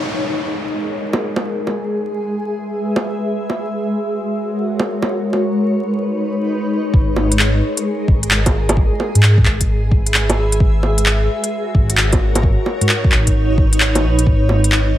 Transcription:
Already playing: ambient pad G#3 D#4 G#4 C#5 D#5, downlifter
0.32 ambient pad A#4
1.13 low bongo
1.36 low bongo
1.67 low bongo
1.97 ambient pad E5
2.96 low bongo
3.50 low bongo
3.77 ambient pad F#4
4.12 ambient pad C#5
4.80 low bongo
5.02 low bongo
5.26 ambient pad B4
5.33 low bongo
5.47 ambient pad D#4
6.94 detuned saw bass G#1, kick
7.05 ambient pad G#4
7.16 low bongo
7.32 closed hi-hat
7.39 ambient pad A#4, clap
7.57 ambient pad D#5
7.77 closed hi-hat
8.08 detuned saw bass G#1, kick
8.23 closed hi-hat
8.31 clap
8.46 kick, closed hi-hat, low bongo
8.54 detuned saw bass G#1
8.69 closed hi-hat, low bongo
8.77 kick
9.00 low bongo
9.15 detuned saw bass G#2, closed hi-hat
9.23 clap
9.38 kick
9.42 detuned saw bass G#1, ambient pad B4 E5, clap
9.61 kick, closed hi-hat
9.69 detuned saw bass G#1
9.91 kick
10.06 closed hi-hat
10.14 clap
10.30 closed hi-hat, low bongo
10.52 closed hi-hat
10.60 detuned saw bass G#1, kick
10.83 low bongo
10.98 closed hi-hat
11.03 ambient pad F#4, clap
11.44 ambient pad C#5, closed hi-hat
11.74 detuned saw bass G#1, kick
11.90 closed hi-hat
11.97 clap
12.13 kick, closed hi-hat, low bongo
12.20 detuned saw bass G#1
12.35 closed hi-hat, low bongo
12.43 ambient pad D#4, kick
12.66 low bongo
12.81 detuned saw bass G#2, closed hi-hat
12.89 clap
13.04 kick
13.10 detuned saw bass G#1, ambient pad B4, clap
13.27 kick, closed hi-hat
13.34 detuned saw bass G#1
13.58 kick
13.73 closed hi-hat
13.80 clap
13.95 closed hi-hat, low bongo
14.03 detuned saw bass A#1
14.19 closed hi-hat
14.26 detuned saw bass G#1, ambient pad G#3, kick
14.49 low bongo
14.64 closed hi-hat
14.70 ambient pad G#4, clap

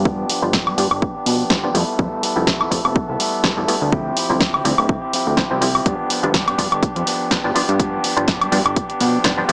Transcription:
Already playing: analog synth bass G2
0.05 clean electric guitar F3, kick
0.29 clean electric guitar F3 B3 D4 G4, open hi-hat
0.42 analog synth bass G1, clav F3 G3 B3 D4
0.53 clean electric guitar F3, kick, snare
0.66 analog synth bass G2, clean electric guitar B3 D4 G4, high woodblock
0.77 analog synth bass G2, clean electric guitar F3 B3 D4 G4, clav F3 G3 B3 D4, open hi-hat
0.90 analog synth bass G1, clean electric guitar B3 D4 G4, high woodblock
1.02 kick
1.15 clean electric guitar B3 D4 G4
1.26 analog synth bass B2, clean electric guitar F3 B3 D4 G4, open hi-hat
1.50 analog synth bass G1, clean electric guitar F3 D4 G4, clav F3 G3 B3 D4, kick, snare
1.64 clav F3 G3 B3 D4
1.74 analog synth bass F2, clean electric guitar G3 B3 E4 A4, clav G3 A3 B3 E4, open hi-hat
1.99 analog synth bass F2, clean electric guitar A4, kick
2.22 clean electric guitar G3 B3 E4 A4, open hi-hat
2.36 analog synth bass F1, clav G3 A3 B3 E4
2.47 clean electric guitar B3 E4 A4, kick, snare
2.60 analog synth bass F2, clean electric guitar B3 E4 A4, high woodblock
2.71 analog synth bass F2, clean electric guitar G3 B3 E4 A4, clav G3 A3 B3 E4, kick, open hi-hat
2.84 analog synth bass F1, clean electric guitar B3 E4 A4, high woodblock
2.96 kick
3.08 analog synth bass C2, clean electric guitar B3 E4 A4
3.19 clean electric guitar G3 B3 E4 A4, open hi-hat
3.44 clav G3 A3 B3 E4, clean electric guitar G3 B3 E4 A4, kick, snare
3.57 analog synth bass F1, clav G3 A3 B3 E4
3.68 clean electric guitar G3 B3 E4 A4, clav G3 A3 B3 E4, open hi-hat
3.82 analog synth bass D2
3.92 clean electric guitar F3 C4 E4 G4, kick
4.16 clean electric guitar F3 C4 E4 G4, open hi-hat
4.30 analog synth bass D1, clav F3 G3 C4 E4
4.40 clean electric guitar E4 G4, kick, snare
4.53 analog synth bass D2, clean electric guitar C4 E4 G4, high woodblock
4.64 analog synth bass D2, clean electric guitar F3 C4 E4 G4, clav F3 G3 C4 E4, open hi-hat
4.78 analog synth bass D1, clean electric guitar C4 E4 G4, high woodblock
4.89 analog synth bass D1, kick
5.02 clean electric guitar C4 E4 G4
5.13 clean electric guitar F3 C4 E4 G4, open hi-hat
5.27 analog synth bass D2
5.37 clav F3 G3 C4 E4, clean electric guitar G4, kick, snare
5.51 analog synth bass C2, clav F3 G3 C4 E4
5.61 clean electric guitar F3 C4 E4 G4, clav F3 G3 C4 E4, open hi-hat
5.75 high woodblock
5.85 analog synth bass G2, clean electric guitar F3 B3 D4 G4, kick, closed hi-hat
6.09 clean electric guitar F3 B3 D4 G4, open hi-hat
6.23 analog synth bass G1, clav F3 G3 B3 D4, closed hi-hat
6.34 clean electric guitar F3 B3 D4 G4, kick, snare, closed hi-hat
6.47 analog synth bass G2, clean electric guitar B3 D4 G4, closed hi-hat, high woodblock
6.58 analog synth bass G2, clean electric guitar F3 B3 D4 G4, clav F3 G3 B3 D4, kick, open hi-hat
6.71 analog synth bass G1, clean electric guitar B3 D4 G4, closed hi-hat, high woodblock
6.83 kick, closed hi-hat
6.95 analog synth bass F2, clean electric guitar B3 D4 G4, closed hi-hat
7.06 clean electric guitar F3 B3 D4 G4, open hi-hat
7.31 clav F3 G3 B3 D4, clean electric guitar D4 G4, kick, snare, closed hi-hat
7.44 analog synth bass G1, clav F3 G3 B3 D4
7.55 clean electric guitar F3 B3 D4 G4, clav F3 G3 B3 D4, open hi-hat
7.69 analog synth bass G2, closed hi-hat
7.79 clean electric guitar F3 B3 D4 G4, kick, closed hi-hat
8.03 clean electric guitar F3 B3 D4 G4, open hi-hat
8.17 analog synth bass G1, clav F3 G3 B3 D4, closed hi-hat
8.27 clean electric guitar F3 B3 D4 G4, kick, snare, closed hi-hat
8.41 analog synth bass G2, clean electric guitar B3 D4 G4, closed hi-hat, high woodblock
8.51 analog synth bass G2, clean electric guitar F3 B3 D4 G4, clav F3 G3 B3 D4, open hi-hat
8.65 analog synth bass G1, clean electric guitar B3 D4 G4, closed hi-hat, high woodblock
8.76 kick, closed hi-hat
8.89 clean electric guitar B3 D4 G4, closed hi-hat
9.00 analog synth bass B2, clean electric guitar F3 B3 D4 G4, open hi-hat
9.24 analog synth bass G1, clean electric guitar F3 B3 D4 G4, clav F3 G3 B3 D4, kick, snare, closed hi-hat
9.38 clav F3 G3 B3 D4
9.48 clean electric guitar G3, clav G3 A3, open hi-hat

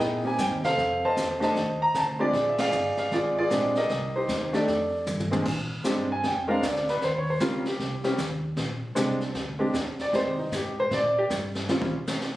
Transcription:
Already playing: grand piano A#4 D#5 G5
0.00 upright bass A#2, grand piano B3 D#4 E4 G#4, brush sweep, kick, snare
0.24 grand piano A#3 C4 D#4 G4 G#5
0.38 upright bass G2, grand piano G5, kick, snare, hi-hat pedal
0.50 upright bass D#2
0.63 upright bass C2, grand piano A4 C5 F5, snare
0.77 upright bass F2, brush sweep, kick, snare
1.05 grand piano C5 D#5 A5
1.16 upright bass E2, kick, snare, hi-hat pedal
1.40 grand piano A3 D4 D#4 G4 C5 D#5 A5, snare
1.55 upright bass D#2, brush sweep, kick, snare
1.82 grand piano A#5
1.94 upright bass D2, grand piano A5, kick, snare, hi-hat pedal
2.19 grand piano G#3 C4 D4 F4 G4 G#4 D5
2.33 upright bass A#1, brush sweep, kick, snare
2.49 grand piano E5
2.58 grand piano G#4 D5 F5, snare, ride
2.72 upright bass G1, hi-hat pedal
2.97 grand piano F5, muted upright bass stroke, snare
3.11 upright bass G#1, grand piano F4 G#4 D5, brush sweep, kick, snare
3.38 grand piano F4 G#4 D5
3.50 upright bass A#1, grand piano G#3 C4 D4 G4, kick, snare, hi-hat pedal
3.75 grand piano G4 A#4 D#5, snare
3.89 upright bass C2, brush sweep, kick, snare
4.16 grand piano D#4 G4 C5
4.28 upright bass D#2, kick, snare, hi-hat pedal
4.53 grand piano A3 D4 D#4 G4 A4 D5, snare
4.68 upright bass F2, brush sweep, kick, snare
5.06 upright bass G2, hi-hat pedal, mid tom
5.20 mid tom
5.31 grand piano A#2 G#3 C4 D4 G#4, mid tom
5.45 upright bass A#2, brush sweep, kick, snare, crash
5.84 upright bass G2, grand piano G#3 C4 D4 G4, kick, snare, hi-hat pedal
6.12 grand piano G#5
6.23 upright bass F2, grand piano G5, brush sweep, kick, snare
6.48 grand piano G#3 C4 D4 A#4 F5
6.61 upright bass D2, grand piano C#5, kick, snare, hi-hat pedal
6.66 grand piano D5
6.76 snare
6.89 grand piano B4, snare
7.01 upright bass D#2, grand piano C5, brush sweep, kick, snare
7.18 grand piano C#5
7.30 grand piano C5
7.40 upright bass C#2, grand piano G3 C4 C#4 F4 A#4, kick, snare, hi-hat pedal
7.65 grand piano G4, snare
7.79 upright bass C2, brush sweep, kick, snare
8.04 grand piano G3 C4 C#4 G4, snare
8.18 upright bass D#2, kick, snare, hi-hat pedal
8.57 upright bass A#1, brush sweep, kick, snare
8.95 upright bass C2, grand piano G#3 C4 D4 G4, kick, snare, hi-hat pedal
9.21 snare
9.35 upright bass D2, brush sweep, kick, snare
9.59 grand piano G#3 C4 D4 G4
9.74 upright bass D#2, kick, snare, hi-hat pedal
9.98 grand piano D5, muted upright bass stroke, snare
10.13 upright bass F2, grand piano G#3 C4 D#4 G4 C5, brush sweep, kick, snare
10.25 upright bass D#2
10.38 upright bass C2, grand piano D#4
10.52 upright bass G#2, grand piano G4, kick, snare, hi-hat pedal
10.80 grand piano C5
10.91 upright bass A#2, grand piano D5, brush sweep, kick, snare
11.18 grand piano G4
11.30 upright bass G2, kick, snare, hi-hat pedal
11.55 snare
11.68 upright bass D#2, grand piano G3 C4 C#4 F4, snare
11.82 kick
12.07 snare, hi-hat pedal
12.21 snare

